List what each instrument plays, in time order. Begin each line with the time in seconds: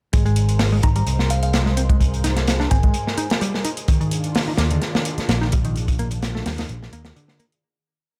0.13 picked electric bass G#1 G#3, analog synth pad G#3 G#4 A#4 C5, kick, closed hi-hat
0.25 picked electric bass G#3, closed hi-hat
0.36 closed hi-hat
0.49 closed hi-hat
0.59 snare, closed hi-hat, open hi-hat
0.72 picked electric bass G#3
0.83 picked electric bass G#1 D#4, synth bell A#5, kick, closed hi-hat
0.96 picked electric bass G3, synth bell A#5, closed hi-hat
1.07 picked electric bass C2, closed hi-hat
1.19 snare
1.30 synth bell F5, closed hi-hat
1.43 synth bell F5, closed hi-hat
1.53 snare, closed hi-hat
1.66 picked electric bass G#3, snare
1.77 picked electric bass C4, closed hi-hat
1.89 picked electric bass G#3, kick, closed hi-hat
2.01 kick, closed hi-hat
2.14 closed hi-hat
2.24 picked electric bass D#4, snare, closed hi-hat
2.36 snare, closed hi-hat
2.47 snare, closed hi-hat
2.60 picked electric bass D4, snare
2.71 picked electric bass G#1 C4, synth bell G#5, kick, closed hi-hat
2.83 picked electric bass G#3, kick, closed hi-hat
2.94 closed hi-hat
3.07 snare
3.18 picked electric bass D#4, closed hi-hat
3.30 snare, closed hi-hat
3.41 picked electric bass G3, closed hi-hat
3.54 snare
3.65 picked electric bass D#4, closed hi-hat
3.77 closed hi-hat
3.88 picked electric bass D#3, analog synth pad D#3 D4 F4, kick, closed hi-hat
4.00 picked electric bass D#3, closed hi-hat
4.11 closed hi-hat
4.24 closed hi-hat
4.35 snare, closed hi-hat, open hi-hat
4.48 picked electric bass D#4
4.58 picked electric bass D#2 A#3, snare, closed hi-hat
4.71 picked electric bass D3, closed hi-hat
4.82 snare, closed hi-hat
4.95 snare
5.05 closed hi-hat
5.18 muted picked electric bass stroke, snare, closed hi-hat
5.29 picked electric bass A#1, snare, closed hi-hat
5.41 picked electric bass D#4, snare
5.52 picked electric bass G3, kick, closed hi-hat
5.65 picked electric bass D#3, closed hi-hat
5.76 closed hi-hat
5.77 closed hi-hat
5.88 kick, closed hi-hat
5.99 picked electric bass A#3, closed hi-hat
6.11 closed hi-hat
6.22 snare, closed hi-hat
6.35 picked electric bass A3, snare
6.46 picked electric bass D#2 G3, snare, closed hi-hat, open hi-hat
6.58 picked electric bass D#3, snare, closed hi-hat, open hi-hat
6.69 picked electric bass A#1, closed hi-hat
6.83 snare
6.93 picked electric bass D#2 A#3, closed hi-hat
7.05 snare, closed hi-hat
7.16 picked electric bass D3, closed hi-hat
7.28 snare
7.39 picked electric bass A#3, closed hi-hat
7.52 closed hi-hat